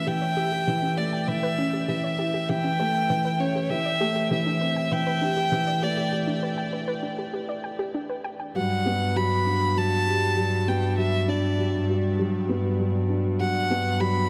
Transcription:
Already playing: E3 A3 C#4
0.07 E3 G4 G5
0.22 C#5
0.37 G4
0.52 G4
0.67 E3 G4
0.83 C#4
0.97 A3 B4 D5
1.13 G5
1.28 E3 B4 E5
1.43 B4
1.58 C#4
1.73 G4
1.88 E3 G4 E5
2.04 C#5
2.19 E4 G4
2.34 G4
2.49 E3 G4 G5
2.64 C#4
2.79 A3 B4
2.95 G5
3.10 E3 B4
3.25 B4
3.40 C#4 C#5
3.55 G4
3.70 E3 G4 E5
3.85 D5
4.00 A3 G4
4.16 G4
4.31 E3 G4 E5
4.46 D4
4.61 C4 B4
4.76 G5
4.91 E3 B4 G5
5.07 B4
5.21 D4 G4
5.37 G4
5.52 E3 G4
5.67 D5
5.82 A3 G4 D5
5.97 G4
6.12 G4
6.27 D4
6.43 B4
6.58 G5
6.73 B4
6.88 B4
7.03 D4
7.18 G4
7.34 G4
7.49 D5
7.64 G5
7.79 G4
7.94 D4
8.09 B4
8.24 G5
8.40 G5
8.55 G2 F#3 F#5
8.86 B3
9.16 F#3 B5
9.46 D4
9.77 F#3 A5
10.07 G4
10.37 F#3
10.68 B3 G5
10.98 F#3 E5
11.28 D4 D5
11.59 F#3
11.89 F#4
12.19 F#3
12.49 B3
12.79 F#3
13.09 D4
13.40 F#3 F#5
13.70 B3
14.00 F#3 B5

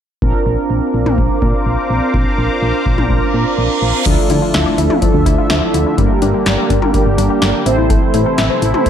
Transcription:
0.22 A#1 C4 D4 F4 A#4 C5 F5 A#5 D6, kick
0.46 A#1
0.70 A#1
0.94 A#1
1.06 A#1, mid tom
1.18 A#1, kick
1.42 A#2, kick
1.66 A#1
1.90 A#1
2.14 A#1, kick
2.38 A#1
2.62 A#1
2.86 A#1, kick
2.98 A#1, mid tom
3.10 A#1, kick, reverse cymbal
3.34 A#2
3.58 A#1
3.82 A#1
4.06 D2 D3 F3 A3 D4 E4 F4 A4 E5, kick, closed hi-hat, crash, impact
4.30 D3 E4, closed hi-hat
4.42 F4
4.54 D2 E5, snare, closed hi-hat
4.66 D5
4.78 D2 E4, closed hi-hat
4.90 D5, mid tom
5.02 F3, kick, closed hi-hat
5.14 D2
5.26 D2 E4, kick, closed hi-hat
5.38 F4
5.50 D2 E5, snare, closed hi-hat
5.74 D2 E4, closed hi-hat
5.86 E4
5.98 G1 G3 A#3 D4 G4 A#4, kick, closed hi-hat
6.22 G2 D4, closed hi-hat
6.34 G4
6.46 G1 D5, snare, closed hi-hat
6.58 A#4
6.70 G1 D4, kick, closed hi-hat
6.82 A#4, mid tom
6.94 G3, kick, closed hi-hat
7.06 G1
7.18 G1 D4, closed hi-hat
7.30 G4
7.42 G1 D5, snare, closed hi-hat
7.66 A1 C3 E3 A3 C4 E4 A4 C5, closed hi-hat
7.78 E4
7.90 A3, kick, closed hi-hat
8.14 A2 E4, closed hi-hat
8.26 A4
8.38 A1 E5, snare, closed hi-hat
8.50 C5
8.62 A1 E4, closed hi-hat
8.74 C5, mid tom
8.86 A3, kick, closed hi-hat

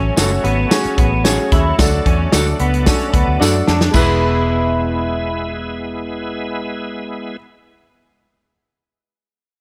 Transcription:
Already playing: F#3 A3 C#4
0.17 F#1 C#4 F#4 A4 C#5, snare, closed hi-hat, tambourine
0.44 G#1 B3, closed hi-hat
0.71 C#4 F#4 G#4, snare, closed hi-hat, tambourine
0.84 muted fingered electric bass stroke, closed hi-hat
0.98 A1 B3, kick, closed hi-hat
1.24 C#4 F#4 G#4 A4 C#5, snare, closed hi-hat, tambourine
1.52 D#2 E4, kick, snare, closed hi-hat
1.78 D2 D4 F#4 A4, kick, snare, closed hi-hat, tambourine
2.06 E2 C#4, kick, closed hi-hat
2.32 D2 D4 F#4 A4 D5, snare, closed hi-hat, tambourine
2.59 C#2 B3, closed hi-hat
2.74 closed hi-hat
2.86 C#4 D4 F#4 A4, kick, snare, closed hi-hat, tambourine
2.99 closed hi-hat
3.13 D2 B3, kick, closed hi-hat
3.27 D2
3.40 F#2 D4 F#4 A4 D5, snare, tambourine
3.67 F2 D4, snare
3.81 snare
3.91 E1 G#3 B3 E4, kick, crash
3.95 G#3 B3 E4 G#4 B4, tambourine

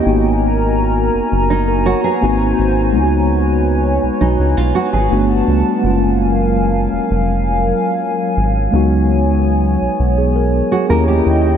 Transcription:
0.03 G#1 A#3 B3 D#4 F#4 A#4 G#5 A#5
0.08 F#4
1.15 F#1
1.32 F#1
1.50 D#4
1.68 A#4
1.86 F#4 C#5
2.04 G#4 B4
2.21 G#1 A#3 C4 D#4 F#4 C5
2.59 G#1
2.92 C#2 G#3 B3 D#4 B4 C#5
2.97 F4
3.04 F#4
4.03 B1
4.21 B1 D#4
4.39 C#2
4.57 B1 F4
4.75 F#4
4.93 G#1 G#4
5.10 G1 G3 A3 B3 D4 F#4 F#5 A5
5.48 C#2
5.82 F#1 F#3 G#3 A#3 C#4 A#4 F5 G#5
5.86 F4
6.93 F1
7.11 F1
8.37 G#1
8.71 C#2 G#3 B3 D#4 C#5
8.76 F#4
9.82 B1
10.00 B1
10.18 G#4
10.36 A#4
10.72 F#4 G#4
10.89 D#2 A#3 C#4 E4 G4 A#4 D#5 G5
11.08 G4
11.26 D#2

